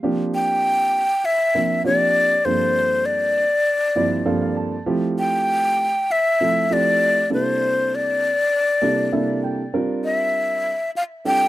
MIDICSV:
0, 0, Header, 1, 3, 480
1, 0, Start_track
1, 0, Tempo, 606673
1, 13, Time_signature, 4, 2, 24, 8
1, 9085, End_track
2, 0, Start_track
2, 0, Title_t, "Flute"
2, 0, Program_c, 0, 73
2, 273, Note_on_c, 0, 79, 105
2, 991, Note_on_c, 0, 76, 94
2, 1002, Note_off_c, 0, 79, 0
2, 1464, Note_off_c, 0, 76, 0
2, 1471, Note_on_c, 0, 74, 94
2, 1939, Note_on_c, 0, 72, 88
2, 1951, Note_off_c, 0, 74, 0
2, 2418, Note_on_c, 0, 74, 92
2, 2430, Note_off_c, 0, 72, 0
2, 3618, Note_off_c, 0, 74, 0
2, 4105, Note_on_c, 0, 79, 101
2, 4838, Note_on_c, 0, 76, 95
2, 4850, Note_off_c, 0, 79, 0
2, 5325, Note_on_c, 0, 74, 96
2, 5336, Note_off_c, 0, 76, 0
2, 5792, Note_off_c, 0, 74, 0
2, 5807, Note_on_c, 0, 72, 85
2, 6291, Note_on_c, 0, 74, 89
2, 6302, Note_off_c, 0, 72, 0
2, 7474, Note_off_c, 0, 74, 0
2, 7947, Note_on_c, 0, 76, 87
2, 8630, Note_off_c, 0, 76, 0
2, 8675, Note_on_c, 0, 77, 86
2, 8727, Note_off_c, 0, 77, 0
2, 8914, Note_on_c, 0, 79, 102
2, 9085, Note_off_c, 0, 79, 0
2, 9085, End_track
3, 0, Start_track
3, 0, Title_t, "Grand piano"
3, 0, Program_c, 1, 0
3, 22, Note_on_c, 1, 58, 68
3, 23, Note_on_c, 1, 60, 67
3, 26, Note_on_c, 1, 53, 77
3, 27, Note_on_c, 1, 62, 70
3, 27, Note_on_c, 1, 67, 87
3, 779, Note_off_c, 1, 58, 0
3, 779, Note_off_c, 1, 60, 0
3, 781, Note_off_c, 1, 53, 0
3, 781, Note_off_c, 1, 62, 0
3, 782, Note_off_c, 1, 67, 0
3, 1222, Note_on_c, 1, 58, 55
3, 1223, Note_on_c, 1, 62, 57
3, 1224, Note_on_c, 1, 60, 57
3, 1224, Note_on_c, 1, 70, 69
3, 1225, Note_on_c, 1, 53, 63
3, 1410, Note_off_c, 1, 58, 0
3, 1411, Note_off_c, 1, 53, 0
3, 1411, Note_off_c, 1, 60, 0
3, 1411, Note_off_c, 1, 62, 0
3, 1411, Note_off_c, 1, 70, 0
3, 1458, Note_on_c, 1, 53, 68
3, 1459, Note_on_c, 1, 58, 63
3, 1463, Note_on_c, 1, 60, 62
3, 1463, Note_on_c, 1, 67, 75
3, 1466, Note_on_c, 1, 62, 65
3, 1839, Note_off_c, 1, 53, 0
3, 1839, Note_off_c, 1, 58, 0
3, 1842, Note_off_c, 1, 60, 0
3, 1842, Note_off_c, 1, 67, 0
3, 1843, Note_off_c, 1, 62, 0
3, 1940, Note_on_c, 1, 53, 60
3, 1941, Note_on_c, 1, 69, 70
3, 1942, Note_on_c, 1, 43, 64
3, 1942, Note_on_c, 1, 60, 57
3, 1943, Note_on_c, 1, 58, 64
3, 1943, Note_on_c, 1, 62, 60
3, 2699, Note_off_c, 1, 53, 0
3, 2699, Note_off_c, 1, 69, 0
3, 2700, Note_off_c, 1, 43, 0
3, 2700, Note_off_c, 1, 60, 0
3, 2700, Note_off_c, 1, 62, 0
3, 2701, Note_off_c, 1, 58, 0
3, 3130, Note_on_c, 1, 53, 70
3, 3130, Note_on_c, 1, 58, 72
3, 3131, Note_on_c, 1, 60, 68
3, 3132, Note_on_c, 1, 43, 77
3, 3133, Note_on_c, 1, 62, 68
3, 3134, Note_on_c, 1, 64, 83
3, 3134, Note_on_c, 1, 74, 66
3, 3325, Note_off_c, 1, 53, 0
3, 3325, Note_off_c, 1, 58, 0
3, 3325, Note_off_c, 1, 60, 0
3, 3326, Note_off_c, 1, 43, 0
3, 3326, Note_off_c, 1, 62, 0
3, 3327, Note_off_c, 1, 64, 0
3, 3359, Note_off_c, 1, 74, 0
3, 3366, Note_on_c, 1, 69, 90
3, 3367, Note_on_c, 1, 58, 76
3, 3367, Note_on_c, 1, 62, 78
3, 3369, Note_on_c, 1, 43, 89
3, 3369, Note_on_c, 1, 53, 80
3, 3370, Note_on_c, 1, 60, 75
3, 3372, Note_on_c, 1, 77, 68
3, 3485, Note_off_c, 1, 77, 0
3, 3497, Note_on_c, 1, 77, 66
3, 3608, Note_off_c, 1, 77, 0
3, 3610, Note_on_c, 1, 81, 64
3, 3754, Note_off_c, 1, 58, 0
3, 3754, Note_off_c, 1, 62, 0
3, 3754, Note_off_c, 1, 69, 0
3, 3755, Note_off_c, 1, 43, 0
3, 3755, Note_off_c, 1, 53, 0
3, 3756, Note_off_c, 1, 60, 0
3, 3837, Note_off_c, 1, 81, 0
3, 3846, Note_on_c, 1, 57, 73
3, 3847, Note_on_c, 1, 53, 80
3, 3847, Note_on_c, 1, 67, 86
3, 3848, Note_on_c, 1, 60, 71
3, 3848, Note_on_c, 1, 64, 76
3, 4612, Note_off_c, 1, 57, 0
3, 4613, Note_off_c, 1, 53, 0
3, 4613, Note_off_c, 1, 60, 0
3, 4613, Note_off_c, 1, 64, 0
3, 4613, Note_off_c, 1, 67, 0
3, 5067, Note_on_c, 1, 53, 62
3, 5068, Note_on_c, 1, 57, 59
3, 5068, Note_on_c, 1, 60, 59
3, 5073, Note_on_c, 1, 64, 58
3, 5074, Note_on_c, 1, 69, 68
3, 5254, Note_off_c, 1, 53, 0
3, 5254, Note_off_c, 1, 57, 0
3, 5254, Note_off_c, 1, 60, 0
3, 5256, Note_off_c, 1, 64, 0
3, 5257, Note_off_c, 1, 69, 0
3, 5303, Note_on_c, 1, 53, 71
3, 5306, Note_on_c, 1, 57, 63
3, 5306, Note_on_c, 1, 60, 66
3, 5306, Note_on_c, 1, 64, 64
3, 5308, Note_on_c, 1, 67, 76
3, 5682, Note_off_c, 1, 53, 0
3, 5684, Note_off_c, 1, 57, 0
3, 5684, Note_off_c, 1, 60, 0
3, 5684, Note_off_c, 1, 64, 0
3, 5685, Note_off_c, 1, 67, 0
3, 5773, Note_on_c, 1, 55, 57
3, 5774, Note_on_c, 1, 58, 59
3, 5776, Note_on_c, 1, 48, 68
3, 5778, Note_on_c, 1, 64, 60
3, 5779, Note_on_c, 1, 62, 63
3, 5782, Note_on_c, 1, 69, 73
3, 6535, Note_off_c, 1, 55, 0
3, 6536, Note_off_c, 1, 58, 0
3, 6537, Note_off_c, 1, 48, 0
3, 6538, Note_off_c, 1, 62, 0
3, 6538, Note_off_c, 1, 64, 0
3, 6540, Note_off_c, 1, 69, 0
3, 6974, Note_on_c, 1, 55, 69
3, 6974, Note_on_c, 1, 58, 67
3, 6977, Note_on_c, 1, 48, 78
3, 6977, Note_on_c, 1, 69, 81
3, 6978, Note_on_c, 1, 62, 68
3, 6978, Note_on_c, 1, 64, 69
3, 7167, Note_off_c, 1, 55, 0
3, 7167, Note_off_c, 1, 58, 0
3, 7168, Note_off_c, 1, 48, 0
3, 7168, Note_off_c, 1, 64, 0
3, 7168, Note_off_c, 1, 69, 0
3, 7169, Note_off_c, 1, 62, 0
3, 7218, Note_on_c, 1, 48, 82
3, 7218, Note_on_c, 1, 55, 74
3, 7218, Note_on_c, 1, 58, 74
3, 7219, Note_on_c, 1, 62, 74
3, 7221, Note_on_c, 1, 64, 76
3, 7221, Note_on_c, 1, 76, 64
3, 7222, Note_on_c, 1, 69, 86
3, 7443, Note_off_c, 1, 76, 0
3, 7462, Note_on_c, 1, 79, 60
3, 7599, Note_off_c, 1, 48, 0
3, 7599, Note_off_c, 1, 55, 0
3, 7599, Note_off_c, 1, 58, 0
3, 7600, Note_off_c, 1, 62, 0
3, 7601, Note_off_c, 1, 64, 0
3, 7601, Note_off_c, 1, 69, 0
3, 7683, Note_off_c, 1, 79, 0
3, 7703, Note_on_c, 1, 55, 77
3, 7703, Note_on_c, 1, 60, 72
3, 7704, Note_on_c, 1, 62, 71
3, 7704, Note_on_c, 1, 70, 89
3, 7705, Note_on_c, 1, 65, 72
3, 8460, Note_off_c, 1, 55, 0
3, 8460, Note_off_c, 1, 60, 0
3, 8460, Note_off_c, 1, 62, 0
3, 8460, Note_off_c, 1, 70, 0
3, 8461, Note_off_c, 1, 65, 0
3, 8898, Note_on_c, 1, 55, 59
3, 8902, Note_on_c, 1, 60, 53
3, 8903, Note_on_c, 1, 69, 69
3, 8904, Note_on_c, 1, 62, 55
3, 8905, Note_on_c, 1, 65, 56
3, 9085, Note_off_c, 1, 55, 0
3, 9085, Note_off_c, 1, 60, 0
3, 9085, Note_off_c, 1, 62, 0
3, 9085, Note_off_c, 1, 65, 0
3, 9085, Note_off_c, 1, 69, 0
3, 9085, End_track
0, 0, End_of_file